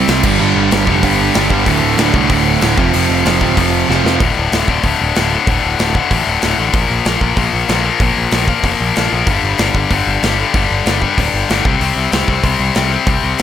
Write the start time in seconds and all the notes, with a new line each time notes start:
0.08 C2 C3 G3 C4, snare, open hi-hat
0.23 G1 G2 D3 G3, kick, crash
0.39 G1 G2 D3 G3
0.56 G1
0.71 G1 G2 D3 G3, snare, open hi-hat
0.87 F1 G2 D3 G3, kick
1.03 G1 G2 D3 G3, kick, open hi-hat
1.34 G1 G2 D3 G3, snare, open hi-hat
1.50 G1 G2 D3 G3, kick
1.66 D1 D2 A2 D3, kick, open hi-hat
1.82 D1
1.97 D1 D2 A2 D3, snare, open hi-hat
2.14 C2 D2 A2 D3, kick
2.29 D1 D2 A2 D3, kick, open hi-hat
2.61 D1 D2 A2 D3, snare, open hi-hat
2.77 F1 F2 C3 F3, kick
2.93 F1 F2 C3 F3, open hi-hat
3.10 F1
3.24 F1 F2 C3 F3, snare, open hi-hat
3.41 D1 F2 C3 F3, kick
3.57 F1 F2 C3 F3, kick, open hi-hat
3.89 F1 F2 C3 F3, snare
4.04 F1 F2 C3 F3, snare
4.20 D1 D2 A2 D3, kick, open hi-hat
4.37 D1
4.52 D1 D2 A2 D3, snare, open hi-hat
4.68 D1 D2 A2 D3, kick
4.83 D1 D2 A2 D3, kick, open hi-hat
5.01 D1
5.15 D1 D2 A2 D3, snare, open hi-hat
5.32 D2 A2 D3
5.47 D1 D2 A2 D3, kick, open hi-hat
5.64 D1
5.79 D1 D2 A2 D3, snare, open hi-hat
5.95 D2 A2 D3, kick
6.11 A1 D2 A2 D3, kick, open hi-hat
6.27 D1
6.42 D1 D2 A2 D3, snare, open hi-hat
6.58 A1 D2 A2 D3
6.73 A#1 A#2 F3 A#3, kick, open hi-hat
6.90 A#1
7.05 A#1 A#2 F3 A#3, snare, open hi-hat
7.21 A#1 A#2 F3 A#3, kick
7.36 A#1 A#2 F3 A#3, kick, open hi-hat
7.53 A#1
7.68 A#1 A#2 F3 A#3, snare, open hi-hat
7.85 A#2 F3 A#3
8.00 A#1 A#2 F3 A#3, kick, open hi-hat
8.17 A#1
8.31 A#1 A#2 F3 A#3, snare, open hi-hat
8.48 A#2 F3 A#3, kick
8.63 F1 A#2 F3 A#3, kick, open hi-hat
8.81 A#1
8.96 A#1 A#2 F3 A#3, snare, open hi-hat
9.13 A#1 A#2 F3 A#3
9.27 G1 G2 D3 G3, kick, open hi-hat
9.43 G1
9.58 G1 G2 D3 G3, snare, open hi-hat
9.74 G1 G2 D3 G3, kick
9.91 G1 G2 D3 G3, kick, open hi-hat
10.07 G1
10.23 G1 G2 D3 G3, snare, open hi-hat
10.39 G2 D3 G3
10.54 G1 G2 D3 G3, kick, open hi-hat
10.71 G1
10.86 G1 G2 D3 G3, snare, open hi-hat
11.02 G2 D3 G3, kick
11.18 D1 G2 D3 G3, kick, open hi-hat
11.34 G1
11.49 G1 G2 D3 G3, snare, open hi-hat
11.65 C2 C3 G3 C4, kick
11.81 C2 C3 G3 C4, open hi-hat
11.96 C2
12.12 C2 C3 G3 C4, snare, open hi-hat
12.28 C2 C3 G3 C4, kick
12.44 C2 C3 G3 C4, kick, open hi-hat
12.59 C2
12.75 C2 C3 G3 C4, snare, open hi-hat
12.91 C3 G3 C4
13.06 C2 C3 G3 C4, kick, open hi-hat
13.23 C2
13.38 C4, open hi-hat